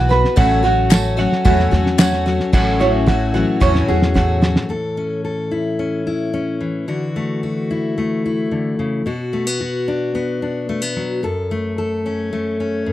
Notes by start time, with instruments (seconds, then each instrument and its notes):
Already playing: upright bass B1, ukulele F#4 F#5
0.09 twelve-string acoustic guitar B3 F#4 B4, ukulele B4, snare
0.25 snare
0.36 upright bass A1, twelve-string acoustic guitar A2 E3 F#3 A3 C#4 F#4, ukulele F#5, kick, snare
0.63 twelve-string acoustic guitar F#3 A3 C#4 F#4, ukulele F#4, snare
0.90 twelve-string acoustic guitar F#3 A3 C#4 F#4, ukulele A4, snare, clap, tambourine
1.17 twelve-string acoustic guitar F#3 A3 C#4 F#4, ukulele F#5, snare
1.32 snare
1.45 upright bass E2, twelve-string acoustic guitar A2 E3 F#3 A3 C#4 F#4, ukulele F#4, kick, snare
1.59 snare
1.71 upright bass E2, twelve-string acoustic guitar F#3 A3 C#4 F#4, snare
1.86 snare
1.98 twelve-string acoustic guitar F#3 A3 C#4 F#4, ukulele F#5, snare, clap, tambourine
2.13 snare
2.26 twelve-string acoustic guitar F#3 A3 C#4 F#4, snare
2.40 snare
2.53 upright bass A1, twelve-string acoustic guitar A2 E3 F#3 A3 C#4 F#4, steel-string acoustic guitar A2 F#4, ukulele F#5, kick, snare, crash
2.80 twelve-string acoustic guitar F#3 A3 C#4 F#4, steel-string acoustic guitar E4, ukulele C#5, snare
3.06 twelve-string acoustic guitar F#3 A3 C#4 F#4, ukulele F#4, kick, snare
3.34 steel-string acoustic guitar E3, twelve-string acoustic guitar F#3 A3 C#4 F#4, ukulele F#5, snare
3.60 upright bass E2, twelve-string acoustic guitar A2 E3 F#3 A3 C#4 F#4, steel-string acoustic guitar C#4, ukulele C#5, kick, snare
3.75 snare
3.88 upright bass E2, twelve-string acoustic guitar F#3 A3 C#4 F#4, ukulele F#4, steel-string acoustic guitar G#4
4.02 snare
4.14 steel-string acoustic guitar A2, twelve-string acoustic guitar F#3 A3 C#4 F#4, ukulele F#5, kick, snare
4.42 twelve-string acoustic guitar F#3 A3 C#4 F#4, snare
4.56 snare
4.69 steel-string acoustic guitar A2 A4
4.97 steel-string acoustic guitar C#4
5.25 steel-string acoustic guitar A4
5.51 steel-string acoustic guitar E4
5.79 steel-string acoustic guitar C#4
6.07 steel-string acoustic guitar E4
6.34 steel-string acoustic guitar C#4
6.61 steel-string acoustic guitar E3
6.88 steel-string acoustic guitar D3 F#4
7.16 steel-string acoustic guitar A3
7.43 steel-string acoustic guitar F#4
7.71 steel-string acoustic guitar E4
7.98 steel-string acoustic guitar A3
8.26 steel-string acoustic guitar E4
8.51 steel-string acoustic guitar D3
8.79 steel-string acoustic guitar C#3
9.06 steel-string acoustic guitar B2 F#4
9.33 steel-string acoustic guitar A3
9.47 steel-string acoustic guitar B3
9.61 steel-string acoustic guitar F#4
9.88 steel-string acoustic guitar D4
10.15 steel-string acoustic guitar B3
10.42 steel-string acoustic guitar D4
10.69 steel-string acoustic guitar A3
10.82 steel-string acoustic guitar B3
10.96 steel-string acoustic guitar F#3
11.23 steel-string acoustic guitar F#2 A4
11.51 steel-string acoustic guitar A3
11.78 steel-string acoustic guitar A4
12.06 steel-string acoustic guitar C#4
12.33 steel-string acoustic guitar A3
12.60 steel-string acoustic guitar C#4
12.86 steel-string acoustic guitar F#2